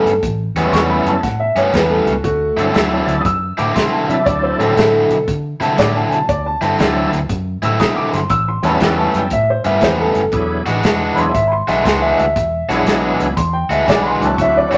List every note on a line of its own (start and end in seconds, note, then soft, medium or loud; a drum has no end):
0.00 0.10 A2 medium
0.00 0.11 G3 medium
0.00 0.11 B3 medium
0.00 0.11 C#4 medium
0.00 0.16 A4 medium
0.05 0.18 G2 medium
0.05 closed hi-hat medium
0.22 0.49 A1 medium
0.22 kick loud
0.22 closed hi-hat medium
0.55 0.68 E2 medium
0.55 0.72 A2 medium
0.55 1.20 G3 medium
0.55 0.72 G3 medium
0.55 1.20 B3 medium
0.55 0.73 B3 medium
0.55 0.73 C#4 medium
0.55 1.20 C#4 medium
0.55 1.21 E4 medium
0.55 1.21 A4 medium
0.55 snare soft
0.55 closed hi-hat medium
0.68 0.98 E2 medium
0.68 0.72 C6 medium
0.73 1.12 A2 medium
0.73 1.12 G3 medium
0.73 1.12 B3 medium
0.73 1.12 C#4 medium
0.73 0.89 C#6 loud
0.73 snare loud
0.73 closed hi-hat medium
0.90 1.06 B5 medium
1.06 1.19 F#2 medium
1.06 1.23 A5 medium
1.06 closed hi-hat medium
1.23 1.49 A2 medium
1.23 1.40 F#5 medium
1.23 kick loud
1.23 snare soft
1.23 closed hi-hat medium
1.40 1.56 E5 medium
1.55 1.69 G2 medium
1.55 1.72 A2 medium
1.55 1.73 G3 medium
1.55 1.73 B3 medium
1.55 1.73 C#4 medium
1.55 1.74 C#5 medium
1.55 closed hi-hat medium
1.73 1.99 E2 medium
1.73 2.12 A2 medium
1.73 2.13 G3 medium
1.73 2.13 B3 medium
1.73 2.13 C#4 medium
1.73 1.90 B4 medium
1.73 kick medium
1.73 snare loud
1.73 closed hi-hat medium
1.90 2.07 A4 medium
2.06 2.20 C#2 medium
2.06 2.23 F#4 medium
2.06 closed hi-hat medium
2.23 2.50 D2 medium
2.23 2.71 A3 medium
2.23 2.73 F#4 loud
2.23 kick loud
2.23 closed hi-hat medium
2.57 2.70 G2 medium
2.57 2.73 D3 medium
2.57 2.73 F#3 medium
2.57 3.22 F#3 medium
2.57 2.74 C4 medium
2.57 3.23 C4 medium
2.57 3.23 D4 medium
2.57 2.74 E4 medium
2.57 3.23 E4 medium
2.57 3.23 A4 medium
2.57 closed hi-hat medium
2.74 3.00 D2 medium
2.74 3.13 D3 medium
2.74 3.13 F#3 medium
2.74 3.14 C4 medium
2.74 3.14 E4 medium
2.74 snare loud
2.74 closed hi-hat medium
3.07 3.21 D2 medium
3.07 closed hi-hat medium
3.21 3.51 F#2 medium
3.21 3.25 D#6 medium
3.21 kick loud
3.25 3.58 E6 loud
3.25 closed hi-hat medium
3.58 3.72 A2 medium
3.58 3.74 D3 medium
3.58 3.74 F#3 medium
3.58 3.75 C4 medium
3.58 3.75 E4 medium
3.58 3.75 D6 medium
3.58 closed hi-hat medium
3.75 4.02 B2 medium
3.75 4.14 D3 medium
3.75 4.14 F#3 medium
3.75 4.15 C4 medium
3.75 4.15 E4 medium
3.75 3.92 C6 medium
3.75 kick medium
3.75 snare loud
3.75 closed hi-hat medium
3.92 4.09 A5 medium
4.08 4.22 C3 medium
4.08 4.74 F#3 medium
4.08 4.74 C4 medium
4.08 4.74 D4 medium
4.08 4.74 E4 medium
4.08 4.74 A4 medium
4.08 4.25 E5 medium
4.08 closed hi-hat medium
4.26 4.52 D2 medium
4.26 4.42 D5 medium
4.26 kick loud
4.26 closed hi-hat medium
4.43 4.60 C5 medium
4.59 4.73 A2 medium
4.59 4.76 D3 medium
4.59 4.76 F#3 medium
4.59 4.76 C4 medium
4.59 4.77 E4 medium
4.59 4.76 A4 medium
4.59 closed hi-hat medium
4.76 5.03 A2 medium
4.76 5.16 D3 medium
4.76 5.16 F#3 medium
4.76 5.16 C4 medium
4.76 5.16 E4 medium
4.76 5.26 A4 loud
4.76 snare loud
4.76 closed hi-hat medium
5.10 5.23 B2 medium
5.10 closed hi-hat medium
5.27 5.53 D3 medium
5.27 kick loud
5.27 closed hi-hat medium
5.60 5.74 C3 medium
5.60 5.76 D3 medium
5.60 5.77 F#3 medium
5.60 5.77 C4 medium
5.60 5.78 E4 medium
5.60 5.78 A5 medium
5.60 snare soft
5.60 closed hi-hat medium
5.77 6.04 A2 medium
5.77 6.16 D3 medium
5.77 6.17 F#3 medium
5.77 6.17 C4 medium
5.77 6.17 E4 medium
5.77 5.95 D5 medium
5.77 kick medium
5.77 snare loud
5.77 closed hi-hat medium
5.95 6.11 A5 medium
6.08 6.24 B2 medium
6.08 6.12 G#5 medium
6.12 6.28 A5 loud
6.12 closed hi-hat medium
6.29 6.55 D2 medium
6.29 6.45 D5 medium
6.29 kick loud
6.29 closed hi-hat medium
6.46 6.62 A5 medium
6.61 6.75 G2 medium
6.61 6.78 D3 medium
6.61 6.78 F#3 medium
6.61 6.78 C4 medium
6.61 6.79 E4 medium
6.61 7.12 A5 loud
6.61 closed hi-hat medium
6.79 7.05 D2 medium
6.79 7.18 D3 medium
6.79 7.18 F#3 medium
6.79 7.10 F#3 medium
6.79 7.18 C4 medium
6.79 7.10 C4 medium
6.79 7.10 D4 medium
6.79 7.18 E4 medium
6.79 7.11 E4 medium
6.79 7.11 A4 medium
6.79 snare loud
6.79 closed hi-hat medium
7.12 7.26 D2 medium
7.12 closed hi-hat medium
7.29 7.55 F#2 medium
7.29 kick loud
7.29 closed hi-hat medium
7.62 7.76 A2 medium
7.62 7.78 D3 medium
7.62 7.78 F#3 medium
7.62 7.79 C4 medium
7.62 7.79 E4 medium
7.62 7.80 E6 medium
7.62 closed hi-hat medium
7.79 8.06 B2 medium
7.79 8.19 D3 medium
7.79 8.19 F#3 medium
7.79 8.19 C4 medium
7.79 8.19 E4 medium
7.79 7.96 D#6 medium
7.79 kick medium
7.79 snare loud
7.79 closed hi-hat medium
7.96 8.13 D6 medium
8.13 8.27 G1 medium
8.13 8.30 C6 medium
8.13 snare soft
8.13 closed hi-hat medium
8.30 8.56 A1 medium
8.30 8.47 E6 loud
8.30 kick loud
8.30 closed hi-hat medium
8.48 8.64 C6 medium
8.62 8.76 E2 medium
8.62 8.79 A2 medium
8.62 9.28 G3 medium
8.62 8.80 G3 medium
8.62 9.28 B3 medium
8.62 8.80 B3 medium
8.62 9.28 C#4 medium
8.62 8.80 C#4 medium
8.62 9.28 E4 medium
8.62 9.29 A4 medium
8.62 8.81 A5 medium
8.62 snare soft
8.62 closed hi-hat medium
8.80 9.07 E2 medium
8.80 9.20 A2 medium
8.80 9.20 G3 medium
8.80 9.20 B3 medium
8.80 9.20 C#4 medium
8.80 8.98 G5 medium
8.80 snare loud
8.80 closed hi-hat medium
8.99 9.15 A5 medium
9.14 9.27 F#2 medium
9.14 9.32 G5 medium
9.14 closed hi-hat medium
9.30 9.57 A2 medium
9.30 9.49 E5 loud
9.30 kick loud
9.30 closed hi-hat medium
9.50 9.66 C5 medium
9.64 9.78 G2 medium
9.64 9.80 A2 medium
9.64 9.81 G3 medium
9.64 9.81 B3 medium
9.64 9.81 C#4 medium
9.64 9.82 E5 loud
9.64 closed hi-hat medium
9.81 10.08 E2 medium
9.81 10.21 A2 medium
9.81 10.21 G3 medium
9.81 10.21 B3 medium
9.81 10.21 C#4 medium
9.81 9.99 C5 medium
9.81 kick medium
9.81 snare loud
9.81 closed hi-hat medium
10.00 10.49 A4 medium
10.15 10.29 F#1 medium
10.15 closed hi-hat medium
10.32 10.59 E1 medium
10.32 10.63 F#3 medium
10.32 10.63 B3 medium
10.32 10.63 D4 medium
10.32 10.64 E4 medium
10.32 10.64 G#4 medium
10.32 kick loud
10.32 closed hi-hat medium
10.66 10.80 A1 medium
10.66 10.82 E3 medium
10.66 10.83 G#3 medium
10.66 10.83 D4 loud
10.66 10.83 F#4 loud
10.66 snare soft
10.66 closed hi-hat medium
10.83 11.09 E1 loud
10.83 11.23 E3 medium
10.83 11.23 G#3 medium
10.83 11.23 D4 medium
10.83 11.23 F#4 medium
10.83 snare loud
10.83 closed hi-hat medium
11.15 11.30 E1 medium
11.15 11.32 F#3 medium
11.15 11.32 B3 medium
11.15 11.32 D4 medium
11.15 11.32 E4 medium
11.15 11.33 G#4 medium
11.15 11.19 B5 medium
11.15 11.35 C6 loud
11.15 closed hi-hat soft
11.34 11.60 G#1 medium
11.34 11.51 E5 loud
11.34 kick loud
11.34 closed hi-hat medium
11.47 11.54 B5 medium
11.52 11.68 C6 medium
11.68 11.81 B1 medium
11.68 11.83 E3 medium
11.68 11.84 G#3 medium
11.68 11.84 D4 medium
11.68 11.84 F#4 medium
11.68 11.85 E5 medium
11.68 snare soft
11.68 closed hi-hat medium
11.84 12.11 C#2 medium
11.84 12.24 E3 medium
11.84 12.24 G#3 medium
11.84 12.24 D4 medium
11.84 12.24 F#4 medium
11.84 12.01 C6 medium
11.84 kick medium
11.84 snare loud
11.84 closed hi-hat medium
12.02 12.18 E5 loud
12.14 12.31 D2 medium
12.14 12.19 D#5 medium
12.19 12.68 E5 medium
12.19 closed hi-hat medium
12.36 12.62 E1 medium
12.36 kick loud
12.36 closed hi-hat medium
12.68 12.82 B1 medium
12.68 12.85 E3 medium
12.68 13.33 F#3 medium
12.68 12.85 G#3 medium
12.68 13.34 B3 medium
12.68 12.86 D4 medium
12.68 13.34 D4 medium
12.68 13.34 E4 medium
12.68 12.86 F#4 medium
12.68 13.35 G#4 medium
12.68 snare soft
12.68 closed hi-hat medium
12.85 13.12 B1 medium
12.85 13.25 E3 medium
12.85 13.25 G#3 medium
12.85 13.26 D4 medium
12.85 13.26 F#4 medium
12.85 snare loud
12.85 closed hi-hat medium
13.19 13.33 C#2 medium
13.19 closed hi-hat medium
13.37 13.63 E2 medium
13.37 13.53 C6 loud
13.37 kick loud
13.37 closed hi-hat medium
13.53 13.70 G5 medium
13.69 13.83 D2 medium
13.69 13.85 E3 medium
13.69 13.86 G#3 medium
13.69 13.86 D4 medium
13.69 13.86 F#4 medium
13.69 13.88 E5 medium
13.69 closed hi-hat medium
13.87 14.14 B1 medium
13.87 14.26 E3 medium
13.87 14.26 G#3 medium
13.87 14.26 D4 medium
13.87 14.26 F#4 medium
13.87 14.05 D5 medium
13.87 kick medium
13.87 snare loud
13.87 closed hi-hat medium
14.02 14.08 B5 medium
14.07 14.22 C6 loud
14.20 14.34 C#2 medium
14.20 14.78 F#3 medium
14.20 14.78 C4 medium
14.20 14.78 D4 medium
14.20 14.78 E4 medium
14.20 14.78 F#4 medium
14.20 closed hi-hat medium
14.24 14.39 A5 medium
14.38 14.65 D2 medium
14.38 14.57 E5 loud
14.38 kick loud
14.38 closed hi-hat medium
14.57 14.72 D5 medium
14.68 14.78 G2 medium
14.68 14.78 D3 medium
14.68 14.78 C4 medium
14.68 14.78 E4 medium
14.68 14.78 F#4 loud
14.68 14.73 C#5 medium
14.68 closed hi-hat medium
14.74 14.78 D5 medium